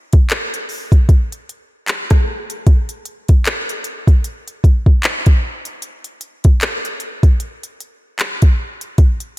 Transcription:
0.13 kick, closed hi-hat
0.30 clap, closed hi-hat
0.54 closed hi-hat
0.69 open hi-hat
0.92 kick, closed hi-hat
1.09 kick, closed hi-hat
1.32 closed hi-hat
1.49 closed hi-hat
1.88 clap, closed hi-hat
2.10 kick, cross-stick, closed hi-hat
2.50 closed hi-hat
2.67 kick, closed hi-hat
2.89 closed hi-hat
3.05 closed hi-hat
3.29 kick, closed hi-hat
3.45 clap, closed hi-hat
3.69 closed hi-hat
3.84 closed hi-hat
4.07 kick, closed hi-hat
4.24 closed hi-hat
4.48 closed hi-hat
4.64 kick, closed hi-hat
4.86 kick
5.04 clap, closed hi-hat
5.26 kick, closed hi-hat
5.65 closed hi-hat
5.82 closed hi-hat
6.04 closed hi-hat
6.21 closed hi-hat
6.44 kick, closed hi-hat
6.61 clap, closed hi-hat
6.85 closed hi-hat
7.00 closed hi-hat
7.23 kick, closed hi-hat
7.40 closed hi-hat
7.63 closed hi-hat
7.80 closed hi-hat
8.19 clap, closed hi-hat
8.42 kick, closed hi-hat
8.81 closed hi-hat
8.98 kick, closed hi-hat
9.20 closed hi-hat

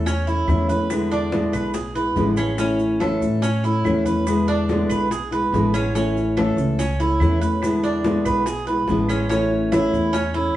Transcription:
Already playing: E2
0.06 C#4, muted nylon-string guitar stroke, high bongo, high conga, maracas
0.27 A3 C#4 E4, high bongo, high conga, maracas
0.47 E2 E3 A3 C#4 E4, high bongo, low bongo, high conga, claves, maracas
0.69 A3 C#4 E4 B4, high conga, maracas
0.90 B2 D3 G#3 B3 E4, high bongo, claves, maracas
1.11 D4, high bongo, high conga, maracas
1.32 B2 D3 G#3 B3 E4, high bongo, high conga, maracas
1.52 B1 B4, high bongo, high conga, claves, maracas
1.74 G#4, muted nylon-string guitar stroke, high bongo, high conga, maracas
1.95 G#3 B3 E4 B4, high bongo, high conga, maracas
2.16 A1 B2 D3 G#3 B3 E4, high bongo, low bongo, high conga, maracas
2.37 G#3 B3 C#4 E4, claves, maracas
2.58 E3 A3 C#4 E4, high bongo, high conga, maracas
2.79 high bongo, high conga, maracas
3.00 E3 A3 C#4 E4 A4, high bongo, high conga, claves, maracas
3.21 A2, high bongo, maracas
3.42 C#4, muted nylon-string guitar stroke, high bongo, high conga, maracas
3.63 A3 C#4 E4, high bongo, high conga, maracas
3.84 E2 E3 A3 C#4 E4, high bongo, low bongo, high conga, claves, maracas
4.05 A3 C#4 E4 B4, high conga, maracas
4.27 B2 D3 G#3 B3 E4, high bongo, high conga, claves, maracas
4.48 D4, high bongo, high conga, maracas
4.69 B2 D3 G#3 B3 E4, high bongo, high conga, maracas
4.89 B1 B4, high bongo, high conga, claves, maracas
5.11 G#4, muted nylon-string guitar stroke, high bongo, high conga, maracas
5.31 G#3 B3 E4 B4, high bongo, high conga, maracas
5.52 A1 B2 D3 G#3 B3 E4, high bongo, low bongo, high conga, maracas
5.74 G#3 B3 C#4 E4, high conga, claves, maracas
5.94 E3 A3 C#4 E4, high bongo, high conga, maracas
6.17 high bongo, high conga, maracas
6.37 E3 A3 C#4 E4 A4, high bongo, high conga, claves, maracas
6.57 C#2, high bongo, maracas
6.79 C#4, muted nylon-string guitar stroke, high bongo, high conga, maracas
7.00 A3 C#4 E4, high bongo, high conga, maracas
7.20 E2 E3 A3 C#4 E4, high bongo, low bongo, high conga, claves, maracas
7.41 A3 C#4 E4 B4, maracas
7.62 B2 D3 G#3 B3 E4, high bongo, high conga, claves, maracas
7.84 D4, high bongo, high conga, maracas
8.04 B2 D3 G#3 B3 E4, high bongo, high conga, maracas
8.25 B1 B4, high bongo, high conga, claves, maracas
8.46 G#4, muted nylon-string guitar stroke, high bongo, high conga, maracas
8.67 G#3 B3 E4 B4, high bongo, high conga, maracas
8.88 A1 B2 D3 G#3 B3 E4, high bongo, low bongo, high conga, maracas
9.09 G#3 B3 C#4 E4, high conga, claves, maracas
9.29 E3 A3 C#4 E4, high bongo, maracas
9.51 high bongo, high conga
9.72 E3 A3 C#4 E4, high bongo, high conga, claves, maracas
9.93 E2, high bongo, high conga, maracas
10.13 C#4, muted nylon-string guitar stroke, high bongo, high conga, maracas
10.34 A3 C#4 E4, high conga

